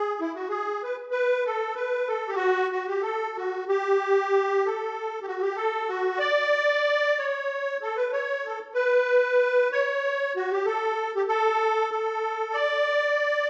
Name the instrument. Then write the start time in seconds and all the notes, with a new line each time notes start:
accordion
Already playing: G#4
0.20 E4
0.35 F#4
0.49 G#4
0.83 B4
1.11 B4
1.46 A4
1.75 B4
2.07 A4
2.28 G4
2.35 F#4
2.72 F#4
2.87 G4
3.02 A4
3.37 F#4
3.68 G4
4.66 A4
5.22 G4
5.27 F#4
5.42 G4
5.56 A4
5.89 F#4
6.19 D5
7.19 C#5
7.82 A4
7.97 B4
8.13 C#5
8.46 A4
8.74 B4
9.72 C#5
10.36 F#4
10.52 G4
10.66 A4
11.16 G4
11.28 A4
11.91 A4
12.53 D5